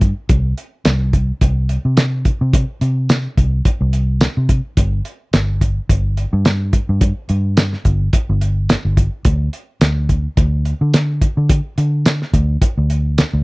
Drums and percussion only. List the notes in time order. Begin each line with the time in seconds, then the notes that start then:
0.01 kick, closed hi-hat
0.29 kick, closed hi-hat
0.58 closed hi-hat
0.85 snare, closed hi-hat, tambourine
1.13 kick, closed hi-hat
1.41 kick, closed hi-hat
1.69 closed hi-hat
1.97 snare, closed hi-hat, tambourine
2.25 kick, closed hi-hat
2.53 kick, closed hi-hat
2.81 closed hi-hat
3.09 snare, closed hi-hat, tambourine
3.37 kick, closed hi-hat
3.65 kick, closed hi-hat
3.93 closed hi-hat
4.21 snare, closed hi-hat, tambourine
4.49 kick, closed hi-hat
4.77 kick, closed hi-hat
5.05 closed hi-hat
5.33 snare, closed hi-hat, tambourine
5.61 kick, closed hi-hat
5.89 kick, closed hi-hat
6.17 closed hi-hat
6.45 snare, closed hi-hat, tambourine
6.73 kick, closed hi-hat
7.01 kick, closed hi-hat
7.29 closed hi-hat
7.57 snare, closed hi-hat, tambourine
7.73 snare
7.85 kick, closed hi-hat
8.13 kick, closed hi-hat
8.41 closed hi-hat
8.69 snare, closed hi-hat, tambourine
8.97 kick, closed hi-hat
9.25 kick, closed hi-hat
9.53 closed hi-hat
9.81 snare, closed hi-hat, tambourine
10.09 kick, closed hi-hat
10.37 kick, closed hi-hat
10.65 closed hi-hat
10.94 snare, closed hi-hat, tambourine
11.22 kick, closed hi-hat
11.49 kick, closed hi-hat
11.78 closed hi-hat
12.06 snare, closed hi-hat, tambourine
12.22 snare
12.34 kick, closed hi-hat
12.62 kick, closed hi-hat
12.90 closed hi-hat
13.18 snare, closed hi-hat, tambourine